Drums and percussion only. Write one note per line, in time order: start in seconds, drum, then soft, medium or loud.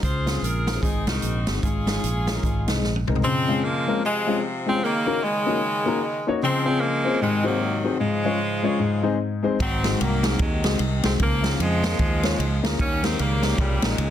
0.03 kick medium
0.03 closed hi-hat medium
0.27 snare loud
0.27 closed hi-hat medium
0.44 closed hi-hat medium
0.67 snare medium
0.67 closed hi-hat medium
0.83 kick loud
0.83 closed hi-hat medium
1.07 snare loud
1.07 closed hi-hat medium
1.22 closed hi-hat medium
1.47 snare loud
1.47 closed hi-hat medium
1.63 kick medium
1.63 closed hi-hat medium
1.87 snare loud
1.87 closed hi-hat medium
2.04 closed hi-hat medium
2.27 snare medium
2.27 closed hi-hat medium
2.43 kick medium
2.43 closed hi-hat medium
2.68 snare medium
2.68 closed hi-hat medium
2.84 snare soft
2.96 high tom soft
3.08 mid tom medium
3.16 floor tom medium
9.60 kick loud
9.60 ride bell medium
9.84 snare loud
9.84 ride bell medium
10.01 ride bell medium
10.23 snare loud
10.23 ride bell medium
10.39 kick loud
10.39 ride bell medium
10.64 snare loud
10.64 ride bell medium
10.79 ride bell medium
11.03 snare loud
11.03 ride bell medium
11.20 kick loud
11.20 ride bell medium
11.44 snare loud
11.44 ride bell medium
11.60 ride bell medium
11.84 snare loud
11.84 ride bell medium
11.99 kick loud
11.99 ride bell medium
12.23 snare loud
12.23 ride bell medium
12.40 ride bell medium
12.64 snare loud
12.64 ride bell medium
12.79 kick loud
12.79 ride bell medium
13.04 snare loud
13.04 ride bell medium
13.19 ride bell medium
13.43 snare loud
13.43 ride bell medium
13.58 kick loud
13.58 ride bell medium
13.82 snare loud
13.82 ride bell medium
13.98 ride bell medium